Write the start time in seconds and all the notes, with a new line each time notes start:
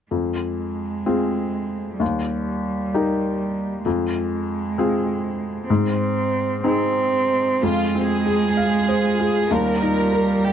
0.11 F2 G#3
1.06 C4 F4 G#4
2.00 D#2 G3
2.94 D#4 G4 A#4
3.85 F2 G#3
4.78 C4 F4 G#4
5.69 G#2 C4
6.64 C4 D#4 G#4
7.62 F2 G#3 C4 F4 F5
7.95 C4
8.10 G#4
8.26 G#4
8.57 F5
8.89 C5
9.20 G#4
9.49 D#2 G3 A#3 G4 A#4 D#5
9.81 D#4
10.13 A#4
10.44 G4 G5